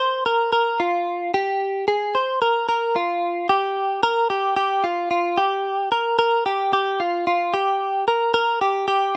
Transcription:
0.00 C5
0.26 A#4
0.53 A#4
0.80 F4
1.34 G4
1.88 G#4
2.15 C5
2.42 A#4
2.69 A#4
2.96 F4
3.49 G4
4.03 A#4
4.30 G4
4.56 G4
4.84 F4
5.11 F4
5.38 G4
5.92 A#4
6.19 A#4
6.46 G4
6.73 G4
7.00 F4
7.27 F4
7.54 G4
8.08 A#4
8.34 A#4
8.61 G4
8.88 G4

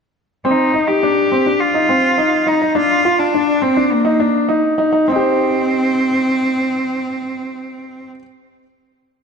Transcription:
0.45 C4 D#4
0.74 D#4
0.88 G4
1.03 D4
1.32 C4
1.46 D4
1.60 F4
1.74 D#4
1.89 C4
2.18 D#4
2.47 D#4
2.62 D#4
2.75 D4 F4
3.05 F4
3.19 D4
3.34 D4
3.62 C4
3.77 D4
3.92 A#3
4.05 D#4
4.20 D4
4.49 D#4
4.78 D#4
4.93 D#4
5.07 C4
5.12 D#4
5.16 G4 C5

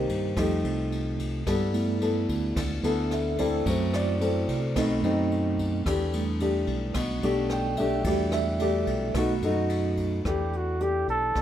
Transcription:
Already playing: C3 D#3 A#3 D#4 G4 A#4 C5
0.09 G2, kick, ride
0.36 F2 F3 G3 A3 D#4 G4, kick, cross-stick, ride
0.64 C2, ride
0.92 ride
1.19 kick, ride
1.47 G2 G3 B3 E4 A4, kick, cross-stick, ride
1.74 A3 B3 E4, ride
2.01 B3 E4 A4, ride
2.29 D2, kick, ride
2.56 D2 D3, kick, cross-stick, ride
2.83 D2 B3 E4 A4, ride
3.11 E5, cross-stick, ride
3.38 C4 E4 A4 D5, kick, ride
3.66 F#2 F#3 A3 C4 E4, kick, ride
3.70 C5
3.93 D5, cross-stick, ride
4.20 C4 E4 A4, ride
4.25 C5
4.48 C3, kick, ride
4.75 B1 B2 A3 C4 D#4, kick, cross-stick, ride
5.03 F#2 A3 C4 D#4, ride
5.31 ride
5.58 kick, ride
5.86 E2 E3 A3 D4 G4, kick, cross-stick, ride
6.13 G3 A3 D4, ride
6.40 A3 D4 G4, ride
6.67 B1, kick, ride
6.94 B1 B2, kick, cross-stick, ride
7.23 B1 A3 D4 G4, ride
7.50 G5, cross-stick, ride
7.77 A3 D4 G4 E5, kick, ride
8.04 E2 E3 G3 A3 D4 F#4 G4 D5, kick, ride
8.32 E5, cross-stick, ride
8.59 A3 D4 G4 D5, ride
8.87 B1, kick, ride
9.14 B1 B2 A3 D#4 F#4, kick, cross-stick, ride
9.42 F#2 A3 D#4 F#4, ride
9.69 ride
9.97 kick, ride
10.25 E2 E3 A3 D4 G4, kick, cross-stick, closed hi-hat
10.53 F#4, closed hi-hat
10.80 A3 D4 G4, closed hi-hat
11.08 B1 A4, kick, closed hi-hat
11.35 B1 B2, kick, cross-stick, closed hi-hat

